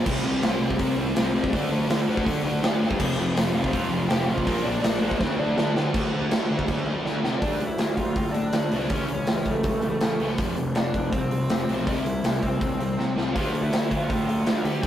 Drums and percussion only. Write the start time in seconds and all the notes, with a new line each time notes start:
0.06 kick, crash
0.43 snare, open hi-hat
0.70 kick
0.79 kick, open hi-hat
1.16 snare, open hi-hat
1.44 kick
1.53 kick, open hi-hat
1.90 snare, open hi-hat
2.17 kick
2.26 kick, open hi-hat
2.63 snare, open hi-hat
2.91 kick
3.00 kick, crash
3.37 snare, open hi-hat
3.64 kick
3.73 kick, open hi-hat
4.10 snare, open hi-hat
4.38 kick
4.47 kick, open hi-hat
4.84 snare, open hi-hat
5.11 kick
5.21 kick, snare
5.58 snare
5.76 snare
5.94 kick, crash
6.31 snare, crash
6.59 kick
6.68 kick, crash
7.06 snare
7.24 snare
7.42 kick, open hi-hat
7.60 open hi-hat
7.78 snare, open hi-hat
7.97 kick, open hi-hat
8.16 kick, open hi-hat
8.34 open hi-hat
8.53 snare, open hi-hat
8.72 open hi-hat
8.90 kick, open hi-hat
9.08 open hi-hat
9.27 snare, open hi-hat
9.45 kick, open hi-hat
9.63 kick, open hi-hat
9.82 open hi-hat
10.01 snare, open hi-hat
10.20 open hi-hat
10.38 kick, open hi-hat
10.56 open hi-hat
10.75 snare, open hi-hat
10.94 kick, open hi-hat
11.13 kick, open hi-hat
11.31 open hi-hat
11.50 snare, open hi-hat
11.69 open hi-hat
11.87 kick, open hi-hat
12.06 open hi-hat
12.24 snare, open hi-hat
12.43 kick, open hi-hat
12.61 kick, open hi-hat
12.80 open hi-hat
12.99 snare
13.18 snare
13.36 kick, open hi-hat
13.55 open hi-hat
13.73 snare, open hi-hat
13.91 kick, open hi-hat
14.10 kick, open hi-hat
14.29 open hi-hat
14.47 snare, open hi-hat
14.65 open hi-hat
14.83 kick, open hi-hat